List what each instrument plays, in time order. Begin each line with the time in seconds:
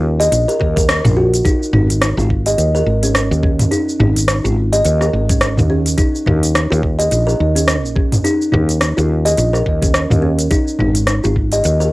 Already playing: fretless electric bass D#2, kalimba F4
0.20 kalimba D#5, closed hi-hat, cabasa
0.32 fretless electric bass A#1, closed hi-hat, cabasa
0.48 kalimba A#4, closed hi-hat, cabasa
0.60 fretless electric bass D#2, kalimba A#4, kick
0.76 kalimba A#4, kick, closed hi-hat, cabasa
0.89 cross-stick, closed hi-hat, cabasa
1.05 fretless electric bass A#1, kalimba F4, closed hi-hat, mid tom, cabasa
1.17 kalimba F#4
1.34 closed hi-hat, cabasa
1.45 kalimba D#4, kick, closed hi-hat, cabasa
1.63 cabasa
1.73 fretless electric bass G#1, kalimba D#4, mid tom
1.90 closed hi-hat, cabasa
2.02 cross-stick, closed hi-hat, cabasa
2.17 fretless electric bass G#1, kalimba F4, cabasa
2.30 kick
2.46 kalimba D#5, closed hi-hat, cabasa
2.58 fretless electric bass D#2, closed hi-hat, cabasa
2.75 kalimba A#4, cabasa
2.86 fretless electric bass G#1
3.03 kalimba C#4, closed hi-hat, cabasa
3.15 cross-stick, closed hi-hat, cabasa
3.31 fretless electric bass D#2, cabasa
3.43 kalimba C#4, kick
3.59 closed hi-hat, mid tom, cabasa
3.71 kalimba D#4, closed hi-hat, cabasa
3.89 cabasa
4.00 fretless electric bass G#1, kalimba D#4, mid tom
4.16 closed hi-hat, cabasa
4.28 cross-stick, closed hi-hat, cabasa
4.44 fretless electric bass G#1, kalimba F4, cabasa
4.73 kalimba D#5, closed hi-hat, cabasa
4.85 fretless electric bass D#2, closed hi-hat, cabasa
5.01 kalimba A#4, cross-stick, cabasa
5.13 fretless electric bass G#1
5.29 kalimba C#4, kick, closed hi-hat, cabasa
5.41 cross-stick, closed hi-hat, cabasa
5.57 fretless electric bass D#2, mid tom, cabasa
5.70 kalimba C#4
5.86 closed hi-hat, cabasa
5.98 kalimba D#4, kick, closed hi-hat, cabasa
6.15 cabasa
6.26 fretless electric bass D#2, kalimba D#4, mid tom
6.43 closed hi-hat, cabasa
6.55 cross-stick, closed hi-hat, cabasa
6.70 fretless electric bass D#2, kalimba F4, cabasa
6.83 kick
6.99 kalimba D#5, closed hi-hat, cabasa
7.11 fretless electric bass A#1, closed hi-hat, cabasa
7.27 kalimba A#4, cabasa
7.40 fretless electric bass D#2
7.55 kalimba C#4, closed hi-hat, cabasa
7.68 cross-stick, closed hi-hat, cabasa
7.85 fretless electric bass A#1, cabasa
7.96 kalimba C#4, kick
8.12 closed hi-hat, mid tom, cabasa
8.24 kalimba D#4, closed hi-hat, cabasa
8.42 cabasa
8.52 fretless electric bass D#2, kalimba D#4, mid tom
8.69 closed hi-hat, cabasa
8.81 cross-stick, closed hi-hat, cabasa
8.97 fretless electric bass D#2, kalimba F4, cabasa
9.25 kalimba D#5, closed hi-hat, cabasa
9.37 fretless electric bass A#1, closed hi-hat, cabasa
9.53 kalimba A#4, cross-stick, cabasa
9.66 fretless electric bass D#2, kick
9.82 kalimba C#4, kick, closed hi-hat, cabasa
9.94 cross-stick, closed hi-hat, cabasa
10.10 fretless electric bass D#2, mid tom, cabasa
10.22 kalimba C#4
10.39 closed hi-hat, cabasa
10.51 kalimba D#4, kick, closed hi-hat, cabasa
10.68 cabasa
10.79 fretless electric bass G#1, kalimba D#4, mid tom
10.95 closed hi-hat, cabasa
11.07 cross-stick, closed hi-hat, cabasa
11.24 fretless electric bass G#1, kalimba F4, cabasa
11.36 kick
11.52 kalimba D#5, closed hi-hat, cabasa
11.64 fretless electric bass D#2, closed hi-hat, cabasa
11.80 kalimba A#4, cabasa